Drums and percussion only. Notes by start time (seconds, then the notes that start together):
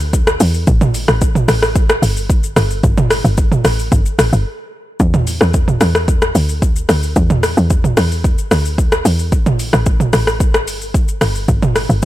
0.00 shaker
0.13 kick, shaker
0.27 cross-stick, shaker
0.40 open hi-hat, shaker
0.54 shaker
0.67 kick, shaker
0.81 mid tom, shaker
0.94 open hi-hat, shaker
1.08 cross-stick, shaker
1.21 kick, shaker
1.35 mid tom, shaker
1.48 cross-stick, open hi-hat, shaker
1.63 cross-stick, shaker
1.76 kick, shaker
1.90 cross-stick, shaker
2.03 open hi-hat, shaker
2.17 shaker
2.30 kick, shaker
2.43 shaker
2.56 cross-stick, open hi-hat, shaker
2.71 shaker
2.84 kick, shaker
2.98 mid tom, shaker
3.11 cross-stick, open hi-hat, shaker
3.25 shaker
3.38 kick, shaker
3.52 mid tom, shaker
3.65 cross-stick, open hi-hat, shaker
3.79 shaker
3.92 kick, shaker
4.06 shaker
4.19 cross-stick, open hi-hat, shaker
4.33 shaker
5.00 kick, shaker
5.14 mid tom, shaker
5.27 open hi-hat, shaker
5.41 cross-stick, shaker
5.54 kick, shaker
5.68 mid tom, shaker
5.81 cross-stick, open hi-hat, shaker
5.95 cross-stick, shaker
6.08 kick, shaker
6.22 cross-stick, shaker
6.35 open hi-hat, shaker
6.49 shaker
6.62 kick, shaker
6.76 shaker
6.89 cross-stick, open hi-hat, shaker
7.03 shaker
7.16 kick, shaker
7.30 mid tom, shaker
7.43 cross-stick, open hi-hat, shaker
7.57 shaker
7.70 kick, shaker
7.84 mid tom, shaker
7.97 cross-stick, open hi-hat, shaker
8.12 shaker
8.24 kick, shaker
8.38 shaker
8.51 cross-stick, open hi-hat, shaker
8.65 shaker
8.78 kick, shaker
8.92 cross-stick, shaker
9.05 open hi-hat, shaker
9.19 shaker
9.32 kick, shaker
9.46 mid tom, shaker
9.59 open hi-hat, shaker
9.73 cross-stick, shaker
9.86 kick, shaker
10.00 mid tom, shaker
10.13 cross-stick, open hi-hat, shaker
10.27 cross-stick, shaker
10.40 kick, shaker
10.54 cross-stick, shaker
10.67 open hi-hat, shaker
10.81 shaker
10.94 kick, shaker
11.08 shaker
11.21 cross-stick, open hi-hat, shaker
11.35 shaker
11.48 kick, shaker
11.62 mid tom, shaker
11.76 cross-stick, open hi-hat, shaker
11.90 shaker